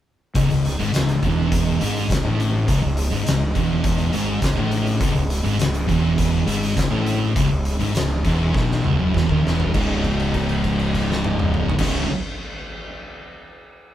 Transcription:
0.35 0.49 C#1 medium
0.35 0.49 C#2 loud
0.35 9.70 C#3 medium
0.35 9.70 G#3 medium
0.35 4.97 D#4 medium
0.35 kick loud
0.35 closed hi-hat medium
0.50 0.77 C#1 medium
0.50 0.73 C#2 medium
0.50 closed hi-hat soft
0.65 closed hi-hat medium
0.79 0.93 G#1 loud
0.79 0.93 G#2 loud
0.79 closed hi-hat soft
0.93 1.21 C#1 medium
0.93 1.17 C#2 medium
0.93 snare loud
0.93 closed hi-hat loud
1.09 closed hi-hat medium
1.23 1.77 E1 medium
1.23 1.80 E2 medium
1.23 kick medium
1.23 closed hi-hat medium
1.52 kick loud
1.52 closed hi-hat loud
1.80 2.08 G#1 medium
1.80 2.09 G#2 medium
1.80 closed hi-hat medium
1.96 closed hi-hat soft
2.10 2.23 C#1 medium
2.10 2.24 C#2 medium
2.10 kick medium
2.10 snare loud
2.10 closed hi-hat loud
2.25 2.65 A1 loud
2.25 2.67 A2 medium
2.40 closed hi-hat medium
2.68 2.82 C#1 loud
2.68 2.82 C#2 loud
2.68 kick loud
2.68 closed hi-hat loud
2.83 3.10 C#1 medium
2.83 3.06 C#2 medium
2.97 closed hi-hat medium
3.12 3.25 G#1 medium
3.12 3.25 G#2 loud
3.12 closed hi-hat soft
3.26 3.53 C#1 medium
3.26 3.50 C#2 medium
3.26 snare loud
3.26 closed hi-hat loud
3.55 4.10 E1 medium
3.55 4.12 E2 loud
3.55 kick medium
3.55 closed hi-hat medium
3.84 kick loud
3.84 closed hi-hat loud
3.98 closed hi-hat soft
4.13 4.41 G#1 loud
4.13 4.42 G#2 medium
4.13 closed hi-hat medium
4.42 4.56 C#1 medium
4.42 4.57 C#2 medium
4.42 kick medium
4.42 snare loud
4.42 closed hi-hat loud
4.56 4.97 A1 loud
4.56 5.00 A2 loud
4.71 closed hi-hat medium
4.86 closed hi-hat soft
5.01 5.14 C#1 medium
5.01 5.14 C#2 loud
5.01 9.71 E4 medium
5.01 kick loud
5.01 closed hi-hat loud
5.15 5.42 C#1 loud
5.15 5.39 C#2 medium
5.15 closed hi-hat soft
5.30 closed hi-hat medium
5.44 5.58 G#1 loud
5.44 5.58 G#2 loud
5.44 closed hi-hat soft
5.59 5.86 C#1 medium
5.59 5.83 C#2 medium
5.59 snare loud
5.59 closed hi-hat loud
5.74 closed hi-hat medium
5.87 6.43 E1 medium
5.87 6.46 E2 loud
5.87 kick medium
5.87 closed hi-hat medium
6.18 kick loud
6.18 closed hi-hat loud
6.46 6.74 G#1 loud
6.46 6.75 G#2 medium
6.46 closed hi-hat medium
6.63 closed hi-hat soft
6.77 6.91 C#1 medium
6.77 6.92 C#2 medium
6.77 kick medium
6.77 snare loud
6.77 closed hi-hat loud
6.91 7.33 A1 loud
6.91 7.35 A2 loud
7.06 closed hi-hat medium
7.35 7.50 C#1 medium
7.35 7.49 C#2 loud
7.35 kick loud
7.35 closed hi-hat loud
7.51 7.78 C#1 loud
7.51 7.75 C#2 medium
7.65 closed hi-hat medium
7.79 7.94 G#1 loud
7.79 7.94 G#2 loud
7.79 closed hi-hat soft
7.95 8.22 C#1 medium
7.95 8.19 C#2 medium
7.95 snare loud
7.95 closed hi-hat loud
8.24 8.52 E1 medium
8.24 8.53 E2 medium
8.24 kick medium
8.24 snare soft
8.24 closed hi-hat medium
8.54 8.82 B1 loud
8.54 8.83 B2 loud
8.54 kick loud
8.54 snare medium
8.71 snare medium
8.83 8.98 C#1 medium
8.83 8.98 C#2 loud
8.83 mid tom medium
8.98 9.14 F#1 medium
8.98 9.12 F#2 medium
8.98 mid tom medium
9.13 9.28 E1 medium
9.13 9.27 E2 loud
9.13 kick medium
9.17 snare medium
9.29 9.43 D#1 loud
9.29 9.42 D#2 loud
9.29 kick medium
9.43 9.72 E1 loud
9.43 9.72 E2 loud
9.47 snare loud
9.60 floor tom medium
9.73 11.68 C#1 medium
9.73 11.76 C#2 loud
9.73 11.78 G#2 medium
9.73 11.67 C#3 medium
9.73 11.80 C#3 loud
9.73 11.67 G#3 medium
9.73 11.67 D#4 medium
9.73 kick loud
9.73 crash medium
10.04 kick medium
10.04 crash soft
10.20 crash soft
10.34 kick medium
10.34 crash medium
10.49 crash medium
10.64 kick medium
10.64 crash medium
10.79 crash soft
10.94 kick medium
10.94 crash medium
11.12 snare loud
11.24 high tom loud
11.39 mid tom loud
11.54 mid tom loud
11.70 floor tom loud
11.76 12.04 C#1 loud
11.76 12.04 C#2 medium
11.76 12.05 G#2 medium
11.76 12.04 C#3 medium
11.76 12.06 C#3 loud
11.76 12.04 G#3 medium
11.76 12.04 D#4 medium
11.76 kick loud
11.76 crash loud
11.81 snare loud

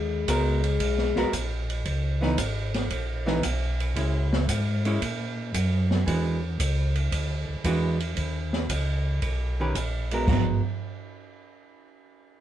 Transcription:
0.00 0.26 D#2 medium
0.00 1.30 G#3 medium
0.28 0.79 C#2 medium
0.28 0.61 G#3 medium
0.28 0.61 B3 medium
0.28 0.61 F#4 medium
0.28 0.61 A#4 medium
0.28 kick soft
0.28 hi-hat pedal medium
0.28 ride medium
0.64 ride soft
0.80 1.14 B1 medium
0.80 kick soft
0.80 ride medium
0.98 snare soft
1.16 1.25 B1 soft
1.16 1.32 G#3 medium
1.16 1.31 B3 medium
1.16 1.32 F#4 medium
1.16 1.32 A#4 medium
1.16 snare soft
1.33 1.84 A#1 medium
1.33 kick soft
1.33 hi-hat pedal medium
1.33 ride medium
1.70 ride soft
1.85 2.37 C#2 medium
1.85 kick soft
1.85 ride soft
2.21 2.36 E3 medium
2.21 2.36 B3 medium
2.21 2.37 D#4 medium
2.21 snare soft
2.38 2.89 G#1 medium
2.38 kick soft
2.38 hi-hat pedal medium
2.38 ride medium
2.74 snare soft
2.74 ride soft
2.90 3.42 A#1 medium
2.90 kick soft
2.90 ride medium
3.26 3.41 E3 medium
3.26 3.42 B3 medium
3.26 3.42 D#4 medium
3.26 snare medium
3.43 3.94 B1 medium
3.43 kick soft
3.43 hi-hat pedal medium
3.43 ride medium
3.80 ride soft
3.96 4.47 C#2 medium
3.96 4.29 G#3 soft
3.96 4.29 C#4 soft
3.96 4.29 E4 soft
3.96 kick soft
3.96 ride medium
4.33 snare medium
4.48 4.99 G#2 medium
4.48 kick soft
4.48 hi-hat pedal medium
4.48 ride medium
4.85 5.00 G#3 medium
4.85 5.00 C#4 medium
4.85 5.00 E4 medium
4.85 ride soft
5.02 5.52 A#2 medium
5.02 kick soft
5.02 ride medium
5.54 6.05 F#2 medium
5.54 kick soft
5.54 hi-hat pedal medium
5.54 ride medium
5.91 snare soft
6.06 6.58 E2 medium
6.06 6.39 E3 medium
6.06 6.39 G#3 medium
6.06 6.39 D4 medium
6.06 6.40 F#4 soft
6.06 kick soft
6.06 ride medium
6.59 7.10 C#2 medium
6.59 kick soft
6.59 hi-hat pedal soft
6.59 ride medium
6.96 ride soft
7.12 7.45 D2 medium
7.12 kick soft
7.12 ride medium
7.49 7.57 D2 soft
7.64 8.15 E2 medium
7.64 7.97 E3 medium
7.64 7.98 G#3 medium
7.64 7.98 D4 medium
7.64 7.98 F#4 medium
7.64 kick soft
7.64 hi-hat pedal soft
7.64 ride medium
8.00 ride soft
8.17 8.68 D#2 medium
8.17 kick soft
8.17 ride medium
8.53 snare soft
8.70 9.21 C#2 medium
8.70 kick soft
8.70 hi-hat pedal medium
8.70 ride medium
9.22 9.73 B1 medium
9.22 kick soft
9.22 ride medium
9.60 9.74 D#3 medium
9.60 9.74 C#4 medium
9.60 9.74 G4 medium
9.60 9.75 B4 medium
9.75 10.26 A#1 medium
9.75 kick soft
9.75 hi-hat pedal medium
9.75 ride medium
10.11 10.26 G#3 medium
10.11 10.27 B3 medium
10.11 10.27 F#4 medium
10.11 10.27 A#4 medium
10.11 ride soft
10.27 10.61 G#1 medium
10.27 10.60 G#3 medium
10.27 10.61 B3 medium
10.27 10.61 F#4 medium
10.27 10.61 A#4 medium
10.27 kick medium
10.27 floor tom medium
10.27 crash medium

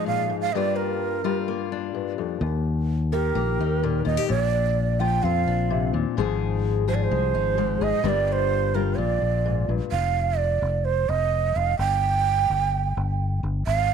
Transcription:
0.00 0.28 G#2 medium
0.00 0.50 F3 medium
0.00 0.53 G#3 medium
0.00 0.51 D#4 medium
0.00 0.50 G#4 medium
0.06 0.30 A#2 medium
0.06 0.39 F5 medium
0.29 0.53 G#2 medium
0.41 0.54 F5 medium
0.53 1.93 G2 medium
0.53 1.24 G3 soft
0.53 1.48 A#3 medium
0.53 1.71 D4 soft
0.53 0.77 D5 medium
0.53 0.57 D#5 medium
0.57 1.23 F4 medium
0.76 1.70 A#4 medium
1.24 2.38 G3 medium
1.24 2.41 F4 medium
1.48 3.35 A#3 medium
1.72 2.39 D4 soft
1.95 2.18 G2 medium
2.18 2.41 F2 medium
2.41 3.31 D#2 medium
2.41 4.29 D#2 medium
3.12 4.29 D#3 medium
3.12 4.04 G4 medium
3.12 4.02 A#4 medium
3.35 3.57 A#1 medium
3.35 3.82 A#3 medium
3.59 4.02 D#2 medium
3.59 4.27 D#4 medium
3.83 4.27 A#2 medium
3.83 4.27 A#3 soft
4.05 4.17 D#2 medium
4.05 4.17 F4 medium
4.05 4.28 D#5 medium
4.17 4.29 G4 soft
4.29 5.19 A#1 medium
4.29 5.70 A#2 medium
4.29 4.43 C#5 medium
4.43 5.01 D5 medium
5.00 6.17 F3 medium
5.00 6.19 F4 medium
5.00 5.25 G5 medium
5.23 5.45 F2 medium
5.23 6.15 C4 medium
5.23 5.93 F5 medium
5.47 5.90 A#1 medium
5.47 6.14 D4 soft
5.70 5.93 C3 medium
5.93 6.04 D#2 medium
5.93 6.17 A#2 medium
6.17 7.07 G#1 loud
6.17 7.56 G#2 medium
6.17 6.87 F3 medium
6.17 7.10 G#3 medium
6.17 7.33 D#4 medium
6.17 6.87 G#4 medium
6.87 8.03 F3 medium
6.87 7.80 G#4 medium
6.87 6.96 C5 medium
6.95 7.05 D5 medium
7.03 7.84 C5 medium
7.11 7.33 C2 medium
7.11 7.57 G#3 medium
7.34 7.77 G#1 medium
7.34 8.02 D#4 medium
7.57 8.02 G#2 medium
7.57 8.04 G#3 medium
7.81 7.92 G#1 medium
7.81 8.02 G#4 medium
7.81 8.05 D#5 medium
8.03 8.94 G1 medium
8.03 8.95 G2 medium
8.03 8.73 G3 medium
8.03 8.95 A#3 medium
8.03 8.96 D4 medium
8.03 8.74 F4 medium
8.03 8.10 D#5 medium
8.09 8.28 D5 medium
8.28 8.33 D5 medium
8.32 8.76 C5 medium
8.74 8.95 G3 medium
8.74 10.86 F4 medium
8.74 8.99 A#4 medium
8.97 9.20 A#1 medium
8.97 9.92 A#2 medium
8.97 9.68 D5 medium
9.22 9.65 A#1 medium
9.46 9.69 G#2 medium
9.68 9.79 A#1 medium
9.68 9.92 G2 medium
9.91 10.58 F1 medium
9.91 10.39 F5 medium
10.38 10.86 D5 medium
10.62 11.05 F1 medium
10.85 11.10 C5 medium
11.09 11.52 F1 medium
11.09 11.58 D#5 medium
11.56 11.78 F1 medium
11.56 11.78 F5 medium
11.79 12.46 G1 medium
11.79 13.39 G5 loud
12.50 12.93 G1 medium
12.97 13.40 G1 medium
13.43 13.65 G1 medium
13.67 13.94 G#1 medium
13.67 13.94 F5 medium

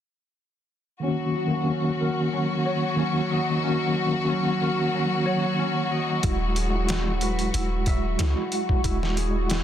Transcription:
1.00 1.46 D#3 medium
1.00 9.63 F#3 medium
1.00 1.47 A#3 medium
1.00 1.67 C#4 medium
1.00 1.48 C#4 medium
1.00 9.63 F#4 medium
1.04 1.49 F#4 medium
1.35 3.78 F#4 medium
1.47 2.92 D#3 medium
1.47 2.93 A#3 medium
1.54 2.95 C#4 medium
1.54 2.97 F#4 medium
1.68 2.32 C#4 medium
2.00 4.12 A#4 medium
2.33 2.97 C#4 medium
2.65 4.56 C#5 medium
2.96 3.58 D#3 medium
2.96 3.59 A#3 medium
2.96 3.63 C#4 medium
2.96 3.60 C#4 medium
3.01 3.61 F#4 medium
3.30 5.09 D#5 medium
3.60 4.07 D#3 medium
3.60 4.08 A#3 medium
3.60 4.28 C#4 medium
3.60 4.09 C#4 medium
3.65 4.10 F#4 medium
3.96 6.40 F#4 medium
4.08 6.18 D#3 medium
4.08 6.19 A#3 medium
4.15 6.21 C#4 medium
4.15 6.22 F#4 medium
4.29 4.93 C#4 medium
4.61 6.73 A#4 medium
4.93 5.58 C#4 medium
5.26 7.17 C#5 medium
5.59 8.49 C#4 medium
5.91 6.30 D#5 medium
6.22 7.51 D#1 medium
6.22 6.68 G#3 medium
6.22 6.89 E4 medium
6.22 6.70 E4 medium
6.22 kick loud
6.22 closed hi-hat medium
6.27 6.71 F#4 medium
6.56 8.84 G#4 medium
6.56 closed hi-hat medium
6.70 8.14 G#3 medium
6.75 8.16 E4 medium
6.80 8.19 F#4 medium
6.89 7.55 E4 medium
6.89 snare loud
6.89 closed hi-hat medium
7.21 9.27 B4 medium
7.21 closed hi-hat medium
7.39 closed hi-hat soft
7.54 8.16 D#1 medium
7.54 8.20 E4 medium
7.54 closed hi-hat medium
7.86 9.59 E5 medium
7.86 kick medium
7.86 closed hi-hat medium
8.18 8.35 C#2 medium
8.18 8.80 G#3 medium
8.18 8.85 E4 medium
8.18 8.82 E4 medium
8.18 snare medium
8.18 closed hi-hat medium
8.23 8.83 F#4 medium
8.52 9.63 F#5 medium
8.52 closed hi-hat medium
8.69 kick medium
8.84 9.63 D#1 loud
8.84 9.49 E4 medium
8.84 9.31 E4 medium
8.84 9.32 F#4 medium
8.84 kick loud
8.84 closed hi-hat medium
9.03 snare soft
9.17 9.63 G#4 medium
9.17 closed hi-hat medium
9.31 9.63 G#3 medium
9.36 9.63 E4 medium
9.40 9.63 F#4 medium
9.50 9.63 E4 medium
9.50 snare loud
9.50 closed hi-hat medium

